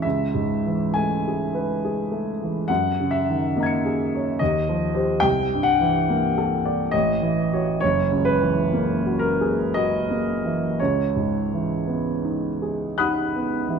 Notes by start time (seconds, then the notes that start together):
0.02 C#2 E5
0.34 G#2
0.66 E3
0.94 A3 G#5
1.28 G#4
1.55 B4
1.85 G#4
2.12 A3
2.43 E3
2.68 F#2 F#5
3.00 C#3
3.11 E5
3.30 D#3
3.57 A#3 D#5 A#5
3.63 G#6 C#7
3.86 G#4
4.15 C#5
4.39 D#2 D#5
4.69 F3
4.94 G4 C5
5.20 C2 G5
5.53 G2
5.63 F#5
5.81 E3
6.10 A#3
6.38 A4
6.65 D5
6.91 A1 D#5
7.22 E3
7.53 F#4 C#5
7.80 F#1 C#5
8.11 C#2
8.25 B4
8.42 E3
8.73 A#3
9.06 F#4
9.19 A#4
9.41 G#4
9.74 F#4 D#5
10.10 A#3
10.45 E3
10.79 C#2 C#5
11.16 G#2
11.54 E3
11.87 B3
12.24 D#4
12.62 G#4
12.98 D#4 F#5 B5 D#6 F#6
13.36 B3
13.68 E3